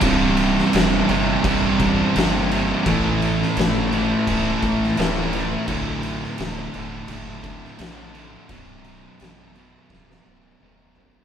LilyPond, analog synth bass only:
\new Staff \with { instrumentName = "Analog synth bass" } { \clef bass \time 4/4 \key b \phrygian \tempo 4 = 85 c,,4 e,,8 g,,8 a,,4 g,,4 | a,,4 g,,4 c,,8 a,,8 d,,4 | a,,4 d,,8 e,,8 fis,,4 ais,,4 | b,,,4 a,,4 d,,8 b,,,8 e,,4 | }